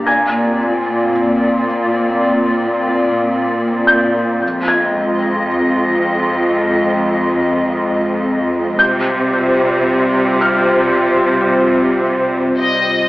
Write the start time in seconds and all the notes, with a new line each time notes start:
Already playing: D5 A#5 D6 A#6
0.05 A#2 A#3 C4 F4 D5 G#5 G#6
3.87 G6
4.41 F2 G#3 C4 F4 D#5
4.68 G#6
8.78 C3 G3 C4 F4 C5 G6
10.41 F6
12.59 D#5